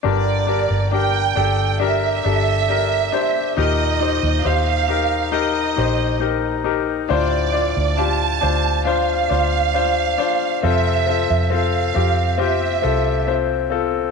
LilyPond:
<<
  \new Staff \with { instrumentName = "Violin section" } { \time 4/4 \key g \dorian \tempo 4 = 68 d''4 g''4 e''2 | ees''4 f''4 ees''4 r4 | d''4 a''4 f''2 | e''4 f''4 e''4 r4 | }
  \new Staff \with { instrumentName = "Grand piano" } { \time 4/4 \key g \dorian <d' g' bes'>8 <d' g' bes'>8 <d' g' bes'>8 <d' g' a'>8 <d' g' bes'>8 <d' g' a'>8 <d' g' bes'>8 <d' g' c''>8 | <ees' g' bes'>8 <ees' g' c''>8 <ees' g' c''>8 <ees' g' bes'>8 <ees' g' bes'>8 <ees' g' c''>8 <ees' g' bes'>8 <ees' g' bes'>8 | <d' f' c''>8 <d' f' d''>8 <d' f' g'>8 <d' f' c''>8 <d' f' c''>8 <d' f' c''>8 <d' f' c''>8 <d' f' c''>8 | <c' f' a'>8 <c' f' a'>8 <c' f' a'>8 <c' f' g'>8 <c' f' g'>8 <c' f' a'>8 <c' f' c''>8 <c' f' a'>8 | }
  \new Staff \with { instrumentName = "Grand piano" } { \clef bass \time 4/4 \key g \dorian <g, d>4. r2 r8 | bes,4. r2 r8 | a,4. r2 r8 | c4. r2 r8 | }
  \new Staff \with { instrumentName = "Fingered electric bass" } { \clef bass \time 4/4 \key g \dorian g,,8. g,,8. g,,4 g,,4 r8 | ees,8. ees,16 ees,4. bes,,4. | d,8. d,8. d,4 d,4 r8 | f,8. f,8. f,4 c,4. | }
>>